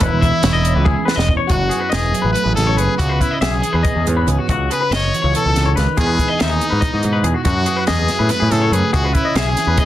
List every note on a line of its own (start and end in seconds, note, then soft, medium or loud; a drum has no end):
0.00 0.11 E1 loud
0.00 1.28 E2 medium
0.00 0.66 C#4 medium
0.00 0.21 B4 loud
0.00 kick loud
0.00 closed hi-hat loud
0.05 1.06 E4 medium
0.12 0.31 E1 medium
0.21 1.48 E3 medium
0.21 0.42 E5 medium
0.21 kick medium
0.21 closed hi-hat medium
0.42 0.52 E1 medium
0.42 1.48 G#3 medium
0.42 0.53 C#5 medium
0.42 snare loud
0.42 closed hi-hat medium
0.52 0.72 E1 medium
0.52 0.74 D#5 medium
0.65 1.48 C#4 medium
0.65 closed hi-hat medium
0.74 0.95 C#2 medium
0.74 0.86 B4 medium
0.85 1.07 G#4 medium
0.85 kick loud
0.85 high tom medium
1.05 1.16 B4 medium
1.05 snare medium
1.16 1.37 E1 medium
1.16 1.37 D#5 medium
1.16 snare medium
1.28 1.50 E2 medium
1.28 kick medium
1.37 1.49 C#5 medium
1.47 1.69 F#1 loud
1.47 2.97 F#2 medium
1.47 2.14 E4 medium
1.47 1.70 F#4 medium
1.47 1.90 F#4 medium
1.47 kick loud
1.47 closed hi-hat medium
1.69 2.55 B3 medium
1.69 1.80 G#4 medium
1.69 closed hi-hat medium
1.80 1.92 B4 medium
1.90 2.12 E1 medium
1.90 2.32 G#4 medium
1.90 2.13 D#5 medium
1.90 snare loud
1.90 closed hi-hat medium
2.13 2.97 F#3 medium
2.13 3.00 E4 medium
2.13 closed hi-hat medium
2.22 2.34 A1 medium
2.22 2.44 B4 medium
2.33 2.74 A3 medium
2.33 2.54 B4 loud
2.33 closed hi-hat medium
2.44 2.55 A1 medium
2.44 2.66 G#4 medium
2.55 2.76 A1 medium
2.55 2.96 C#3 medium
2.55 3.18 B3 medium
2.55 2.79 A4 medium
2.55 snare soft
2.55 closed hi-hat medium
2.67 2.78 C#5 medium
2.75 2.87 F#1 medium
2.75 2.95 A3 medium
2.75 2.98 G#4 medium
2.75 2.99 B4 medium
2.75 closed hi-hat medium
2.98 3.19 C#2 medium
2.98 3.63 C#3 medium
2.98 3.62 E4 medium
2.98 3.23 F#4 medium
2.98 3.09 G#4 medium
2.98 kick loud
2.98 closed hi-hat medium
3.09 3.31 B4 medium
3.19 3.31 B3 medium
3.19 3.41 E4 medium
3.19 kick medium
3.19 closed hi-hat medium
3.31 4.06 C#4 soft
3.31 3.41 D#5 medium
3.41 3.61 B1 medium
3.41 4.23 G#4 medium
3.41 3.52 E5 medium
3.41 snare medium
3.41 closed hi-hat medium
3.52 3.73 G#4 medium
3.62 4.54 E3 medium
3.62 4.51 E4 medium
3.62 closed hi-hat medium
3.73 3.84 E2 medium
3.73 3.84 B4 medium
3.83 4.26 B3 medium
3.83 4.05 D#5 medium
3.83 kick loud
3.83 closed hi-hat medium
3.96 4.05 E2 medium
4.07 4.26 E2 medium
4.07 4.47 G#2 medium
4.07 4.47 C#4 medium
4.07 closed hi-hat medium
4.17 4.28 B4 medium
4.27 4.37 C#2 medium
4.27 4.53 B3 medium
4.27 4.38 G#4 medium
4.27 closed hi-hat medium
4.38 4.49 F#4 medium
4.49 4.68 C#2 loud
4.49 5.13 C#3 medium
4.49 4.70 F#4 medium
4.49 5.14 F#4 medium
4.49 kick loud
4.49 closed hi-hat medium
4.70 4.83 B3 medium
4.70 4.81 G#4 medium
4.70 4.91 B4 medium
4.70 closed hi-hat medium
4.81 5.99 C#4 soft
4.81 4.92 B4 medium
4.91 5.10 F#1 medium
4.91 5.13 D#5 medium
4.91 snare medium
4.91 closed hi-hat medium
4.96 5.33 C#5 loud
5.14 5.78 E3 medium
5.14 5.96 F#4 medium
5.14 closed hi-hat medium
5.22 5.33 C#2 medium
5.22 5.44 C#5 medium
5.35 5.56 B2 medium
5.35 5.75 A4 loud
5.35 closed hi-hat medium
5.44 5.55 C#2 medium
5.44 5.65 A4 medium
5.56 5.74 C#2 medium
5.56 5.78 C#3 medium
5.56 snare soft
5.56 closed hi-hat medium
5.66 5.75 C#5 medium
5.76 5.86 C#2 medium
5.76 5.98 D#3 medium
5.76 5.97 B4 medium
5.76 snare soft
5.76 closed hi-hat medium
5.97 6.17 E2 loud
5.97 7.46 E2 medium
5.97 6.63 E3 medium
5.97 6.83 G#3 medium
5.97 6.20 D#4 medium
5.97 6.08 G#4 medium
5.97 6.38 G#4 loud
5.97 kick loud
5.97 closed hi-hat medium
6.06 6.28 B4 medium
6.19 7.04 D#4 medium
6.19 kick medium
6.19 closed hi-hat medium
6.28 6.39 D#5 medium
6.39 6.59 D#2 medium
6.39 7.22 D#4 medium
6.39 6.50 E5 medium
6.39 snare loud
6.39 closed hi-hat medium
6.50 6.70 G#4 medium
6.61 7.50 E3 medium
6.61 7.47 G#4 medium
6.61 closed hi-hat medium
6.70 6.81 G#2 medium
6.70 6.81 B4 medium
6.81 7.26 G#3 medium
6.81 7.03 D#5 medium
6.81 kick loud
6.81 closed hi-hat medium
6.94 7.03 G#2 medium
7.03 7.23 G#2 medium
7.03 7.44 B2 medium
7.03 7.44 D#4 medium
7.03 closed hi-hat medium
7.13 7.24 B4 medium
7.23 7.33 E2 medium
7.23 7.50 G#3 medium
7.23 7.34 G#4 medium
7.23 closed hi-hat medium
7.34 7.43 F#4 medium
7.45 7.65 F#2 loud
7.45 8.91 F#2 medium
7.45 8.10 E4 medium
7.45 7.66 F#4 medium
7.45 7.85 F#4 loud
7.45 kick loud
7.45 closed hi-hat medium
7.66 8.53 B3 medium
7.66 7.76 G#4 medium
7.66 closed hi-hat medium
7.76 7.87 B4 medium
7.87 8.08 E2 medium
7.87 8.32 G#4 medium
7.87 8.09 D#5 medium
7.87 snare loud
7.87 closed hi-hat medium
8.08 8.91 F#3 medium
8.08 8.95 E4 medium
8.08 snare soft
8.08 closed hi-hat medium
8.19 8.29 A2 medium
8.19 8.40 B4 medium
8.29 8.73 A3 medium
8.29 8.53 B4 medium
8.29 snare soft
8.29 closed hi-hat medium
8.40 8.51 A2 medium
8.40 8.61 G#4 medium
8.51 8.70 A2 medium
8.51 8.92 C#3 medium
8.51 9.18 B3 medium
8.51 8.75 A4 medium
8.51 snare soft
8.51 closed hi-hat medium
8.61 8.73 C#5 medium
8.72 8.81 F#2 medium
8.72 8.93 A3 medium
8.72 8.93 G#4 medium
8.72 8.94 B4 medium
8.72 closed hi-hat medium
8.93 9.13 C#2 loud
8.93 9.57 C#3 medium
8.93 9.59 E4 medium
8.93 9.16 F#4 medium
8.93 9.04 G#4 medium
8.93 kick loud
8.93 closed hi-hat medium
9.04 9.25 B4 medium
9.14 9.38 E4 medium
9.14 kick medium
9.14 closed hi-hat medium
9.18 9.85 C#4 medium
9.25 9.36 D#5 medium
9.35 9.54 B1 medium
9.35 9.85 G#4 medium
9.35 9.47 E5 medium
9.35 snare loud
9.35 closed hi-hat medium
9.47 9.68 G#4 medium
9.57 9.85 E3 medium
9.57 9.85 E4 medium
9.57 snare soft
9.57 closed hi-hat medium
9.67 9.77 E2 medium
9.67 9.78 B4 medium
9.77 9.85 B3 medium
9.77 9.85 D#5 medium
9.77 kick loud
9.77 closed hi-hat medium